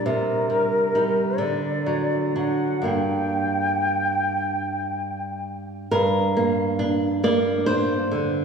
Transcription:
0.06 nylon-string guitar C3, flute A#4
0.50 nylon-string guitar G3
0.95 nylon-string guitar G3 D#4
1.38 nylon-string guitar D3, flute D5
1.86 nylon-string guitar F#3
2.36 nylon-string guitar F#3 D4, flute F#5
2.82 nylon-string guitar G2 A#3 D4
2.88 flute G5
5.91 nylon-string guitar G2 A#4
6.37 nylon-string guitar A#3
6.79 nylon-string guitar D4
7.24 nylon-string guitar A#3 D5
7.66 nylon-string guitar D4 C5
8.11 nylon-string guitar D3

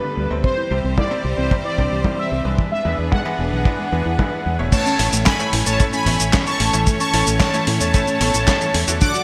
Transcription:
Already playing: grand piano G2 G3 B3 D4 B4, string section D3 G3 B3 A4 B4, analog polysynth B4
0.04 synth arpeggio sound D3
0.17 fingered electric bass D2, synth arpeggio sound G3
0.31 fingered electric bass D2, grand piano C3 G3 C4 E4 C5, synth arpeggio sound D3
0.44 string section E3 G3 C4 G4 C5, synth arpeggio sound C4, analog polysynth C5, kick
0.57 synth arpeggio sound E4
0.71 fingered electric bass C2, grand piano C3 G3 C4 E4 C5, synth arpeggio sound G4
0.84 fingered electric bass C2, synth arpeggio sound C4
0.98 synth arpeggio sound E4, analog polysynth D5, kick, snare
1.11 grand piano C3 G3 C4 E4 C5, synth arpeggio sound C4
1.24 fingered electric bass C2, synth arpeggio sound G4
1.38 fingered electric bass C2, synth arpeggio sound C4, analog polysynth C5
1.51 grand piano C3 G3 C4 E4 C5, synth arpeggio sound C5, kick
1.65 synth arpeggio sound E4, analog polysynth D5
1.78 fingered electric bass C2, grand piano C3 G3 C4 E4 C5, synth arpeggio sound D4, kick
1.91 fingered electric bass C2, synth arpeggio sound G4
2.04 grand piano C3 G3 C4 E4 C5, synth arpeggio sound E4, kick, snare
2.18 synth arpeggio sound G3, analog polysynth E5
2.32 fingered electric bass C2, synth arpeggio sound C4
2.45 fingered electric bass C2, synth arpeggio sound G3, grand piano G#3 D4 E4 B4
2.58 synth arpeggio sound E3, string section E3 B3 D4 G#4 B4, kick
2.72 synth arpeggio sound G#3, analog polysynth E5
2.85 fingered electric bass E2, grand piano G#3 D4 E4 B4, synth arpeggio sound B3, snare
2.98 fingered electric bass E2, synth arpeggio sound E3
3.12 synth arpeggio sound G#3, analog polysynth F#5, kick, snare
3.25 synth arpeggio sound E3, grand piano G#3 D4 E4 B4
3.39 fingered electric bass E1, synth arpeggio sound B3
3.52 fingered electric bass B1, synth arpeggio sound E3, analog polysynth F#5
3.65 grand piano G#3 D4 E4 B4, synth arpeggio sound E4, kick
3.79 synth arpeggio sound G#3
3.92 fingered electric bass E2, grand piano G#3 D4 E4 B4, synth arpeggio sound B3
4.06 fingered electric bass E2, synth arpeggio sound E4
4.19 synth arpeggio sound E3, grand piano G#3 D4 E4 B4, kick, snare
4.32 synth arpeggio sound E3
4.46 fingered electric bass E2, synth arpeggio sound G#3
4.59 fingered electric bass E1, grand piano A2 A3 C#4 E4 C#5, synth arpeggio sound B3
4.72 string section E3 A3 C#4 A4 C#5, synth arpeggio sound A3, analog polysynth C#5 A5, kick, closed hi-hat, crash, cabasa
4.86 synth arpeggio sound C#4, closed hi-hat, cabasa
4.99 fingered electric bass A1, grand piano A2 A3 C#4 E4 C#5, synth arpeggio sound E4, open hi-hat
5.13 fingered electric bass A1, synth arpeggio sound A3, closed hi-hat, cabasa
5.26 synth arpeggio sound C#4, analog polysynth G#5 B5, kick, snare, clap, closed hi-hat, cabasa
5.39 grand piano A2 A3 C#4 E4 C#5, synth arpeggio sound A3, closed hi-hat, cabasa
5.53 fingered electric bass A1, synth arpeggio sound E4, open hi-hat
5.66 fingered electric bass A1, synth arpeggio sound A3, analog polysynth C#5 A5, closed hi-hat, cabasa
5.80 grand piano A2 A3 C#4 E4 C#5, synth arpeggio sound A4, kick, closed hi-hat, cabasa
5.93 synth arpeggio sound C#4, analog polysynth G#5 B5, closed hi-hat, cabasa
6.06 fingered electric bass A1, grand piano A2 A3 C#4 E4 C#5, synth arpeggio sound B3, kick, open hi-hat
6.20 fingered electric bass A1, synth arpeggio sound E4, closed hi-hat, cabasa
6.33 grand piano A2 A3 C#4 E4 C#5, synth arpeggio sound C#4, kick, snare, clap, closed hi-hat, cabasa
6.46 synth arpeggio sound E3, analog polysynth A5 C#6, closed hi-hat, cabasa
6.60 fingered electric bass A1, synth arpeggio sound A3, open hi-hat
6.73 fingered electric bass A1, grand piano A2 A3 C#4 E4 C#5, synth arpeggio sound E3, closed hi-hat, cabasa
6.87 synth arpeggio sound A3, kick, closed hi-hat, cabasa
7.00 synth arpeggio sound C#4, analog polysynth A5 C#6, closed hi-hat, cabasa
7.14 fingered electric bass A1, grand piano A2 A3 C#4 E4 C#5, synth arpeggio sound E4, open hi-hat
7.27 fingered electric bass A1, synth arpeggio sound A3, closed hi-hat, cabasa
7.40 synth arpeggio sound C#4, analog polysynth C#5 A5, kick, snare, clap, closed hi-hat, cabasa
7.54 grand piano A2 A3 C#4 E4 C#5, synth arpeggio sound A3, closed hi-hat, cabasa
7.67 fingered electric bass A2, synth arpeggio sound E4, open hi-hat
7.81 fingered electric bass E2, synth arpeggio sound A3, analog polysynth C#5 A5, closed hi-hat, cabasa
7.94 grand piano A2 A3 C#4 E4 C#5, synth arpeggio sound A4, kick, closed hi-hat, cabasa
8.07 synth arpeggio sound C#4, closed hi-hat, cabasa
8.21 fingered electric bass A1, grand piano A2 A3 C#4 E4 C#5, synth arpeggio sound B3, open hi-hat
8.34 fingered electric bass A1, synth arpeggio sound E4, closed hi-hat, cabasa
8.48 grand piano A2 A3 C#4 E4 C#5, synth arpeggio sound C#4, kick, snare, clap, closed hi-hat, cabasa
8.61 synth arpeggio sound E3, closed hi-hat, cabasa
8.74 fingered electric bass E2, synth arpeggio sound A3, open hi-hat
8.88 fingered electric bass E2, grand piano D3 A3 D4 F#4 D5, synth arpeggio sound E3, closed hi-hat, cabasa
9.01 string section F#3 D4 D5, synth arpeggio sound D4, analog polysynth F#5 D6, kick, closed hi-hat, cabasa
9.15 synth arpeggio sound F#4, closed hi-hat, cabasa

